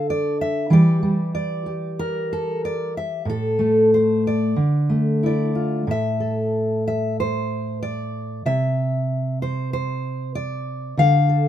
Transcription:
0.00 0.73 D3 medium
0.00 0.69 D4 medium
0.00 0.69 A4 soft
0.10 0.41 D5 medium
0.41 0.73 E5 medium
0.70 3.25 E3 medium
0.70 1.01 G3 medium
0.70 1.65 G4 medium
0.70 1.33 D5 medium
1.03 3.58 G3 medium
1.35 2.31 D5 medium
1.66 3.23 G4 soft
1.99 2.95 A#4 medium
2.33 2.64 A4 medium
2.65 2.96 D5 medium
2.97 3.28 E5 medium
3.25 4.57 A2 medium
3.30 3.93 A4 medium
3.59 4.53 A3 medium
3.94 4.26 C5 medium
4.27 5.25 D5 medium
4.56 5.88 D3 medium
4.89 5.84 A3 medium
5.23 5.85 E4 soft
5.23 5.90 D5 medium
5.55 5.84 F4 soft
5.87 8.45 A2 medium
5.87 6.86 E5 medium
6.20 8.41 A4 soft
6.88 7.19 E5 medium
7.20 7.82 C5 medium
7.83 8.46 D5 medium
8.46 10.94 C3 medium
8.46 9.41 E5 medium
9.42 9.72 C5 medium
9.73 10.35 C5 medium
10.35 10.98 D5 medium
10.97 11.48 D3 medium
10.97 11.48 F5 loud
11.29 11.48 A4 soft

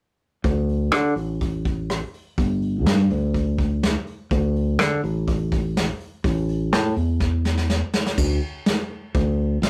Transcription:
0.44 0.92 D2 medium
0.44 kick medium
0.44 open hi-hat medium
0.69 open hi-hat soft
0.92 1.13 D3 medium
0.92 cross-stick medium
0.92 open hi-hat medium
1.16 2.01 A1 medium
1.16 open hi-hat soft
1.41 kick medium
1.41 open hi-hat medium
1.65 kick medium
1.65 open hi-hat soft
1.90 cross-stick loud
1.90 open hi-hat medium
2.14 open hi-hat soft
2.38 2.86 G1 medium
2.38 kick medium
2.38 open hi-hat medium
2.62 open hi-hat soft
2.86 3.07 G2 medium
2.86 snare loud
2.86 open hi-hat medium
3.10 3.95 D2 medium
3.10 open hi-hat soft
3.34 kick medium
3.34 open hi-hat medium
3.58 kick medium
3.58 open hi-hat soft
3.83 snare medium
3.83 open hi-hat medium
4.07 open hi-hat soft
4.31 4.79 D2 medium
4.31 kick medium
4.31 open hi-hat medium
4.55 open hi-hat soft
4.79 5.00 D3 medium
4.79 snare medium
4.79 open hi-hat medium
5.04 5.88 A1 medium
5.04 open hi-hat soft
5.27 kick medium
5.27 open hi-hat medium
5.52 kick medium
5.52 open hi-hat soft
5.77 snare medium
5.77 open hi-hat medium
6.00 open hi-hat soft
6.24 6.73 A1 medium
6.24 kick medium
6.24 open hi-hat medium
6.49 open hi-hat soft
6.72 6.94 A2 medium
6.72 snare medium
6.72 open hi-hat medium
6.96 7.81 E2 medium
6.96 open hi-hat soft
7.20 kick medium
7.20 snare soft
7.45 snare medium
7.57 snare medium
7.70 snare medium
7.94 snare medium
8.06 snare medium
8.18 8.39 D2 medium
8.18 kick medium
8.18 crash medium
8.66 snare loud
9.15 9.57 D2 medium
9.15 kick loud
9.15 open hi-hat soft
9.62 9.70 G#1 medium
9.62 snare medium
9.62 open hi-hat soft

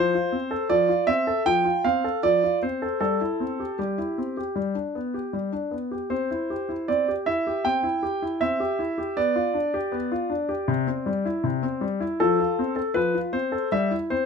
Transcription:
0.00 0.13 F3 medium
0.00 0.66 C5 medium
0.14 0.34 F4 soft
0.32 0.52 C4 soft
0.51 0.71 A4 soft
0.70 0.88 F3 medium
0.70 1.08 D5 medium
0.89 1.09 F4 soft
1.07 1.28 C4 soft
1.07 1.42 E5 medium
1.27 1.47 A4 soft
1.46 1.65 F3 soft
1.46 1.84 G5 medium
1.65 1.85 F4 soft
1.84 2.05 C4 soft
1.84 2.19 F5 medium
2.04 2.24 A4 soft
2.23 2.42 F3 soft
2.23 2.58 D5 medium
2.44 2.63 F4 soft
2.63 2.83 C4 soft
2.63 3.01 C5 medium
2.82 2.99 A4 soft
3.01 3.19 G3 soft
3.01 3.78 A4 medium
3.21 3.41 E4 soft
3.40 3.60 C4 soft
3.60 3.77 G4 soft
3.79 3.97 G3 soft
3.79 4.36 G4 soft
3.98 4.18 E4 soft
4.18 4.38 C4 soft
4.37 4.56 G4 soft
4.56 4.74 G3 soft
4.75 4.95 D4 soft
4.95 5.15 B3 soft
5.14 5.34 G4 soft
5.33 5.52 G3 soft
5.52 5.73 D4 soft
5.71 5.92 B3 soft
5.91 6.11 G4 soft
6.10 6.29 C4 soft
6.10 6.87 C5 medium
6.31 6.51 E4 soft
6.50 6.70 G4 soft
6.69 6.89 E4 soft
6.88 7.07 C4 soft
6.88 7.11 D5 medium
7.08 7.28 G4 soft
7.26 7.46 E4 soft
7.26 7.64 E5 medium
7.47 7.66 G4 soft
7.65 7.83 C4 soft
7.65 8.41 G5 medium
7.83 8.03 E4 soft
8.03 8.23 G4 soft
8.22 8.42 E4 soft
8.41 8.59 C4 soft
8.41 9.17 E5 medium
8.60 8.80 G4 soft
8.79 8.99 E4 soft
8.98 9.17 G4 soft
9.17 9.35 B3 medium
9.17 12.20 D5 medium
9.36 9.56 F4 soft
9.54 9.74 D4 soft
9.74 9.94 G4 soft
9.92 10.11 B3 medium
10.12 10.31 F4 soft
10.30 10.50 D4 soft
10.49 10.68 G4 soft
10.68 10.86 C3 medium
10.87 11.07 C4 soft
11.06 11.26 G3 soft
11.25 11.45 E4 soft
11.44 11.62 C3 medium
11.63 11.83 C4 soft
11.81 12.01 G3 soft
12.00 12.19 E4 soft
12.20 12.38 F3 medium
12.20 12.74 A4 medium
12.40 12.59 F4 soft
12.59 12.78 C4 soft
12.76 12.96 A4 soft
12.94 13.13 F3 soft
12.94 13.17 B4 medium
13.15 13.34 F4 soft
13.33 13.53 C4 soft
13.33 13.67 C5 medium
13.52 13.71 A4 soft
13.72 13.90 G3 medium
13.72 13.95 E5 medium
13.91 14.11 E4 soft
14.10 14.26 C4 soft
14.10 14.26 C5 medium

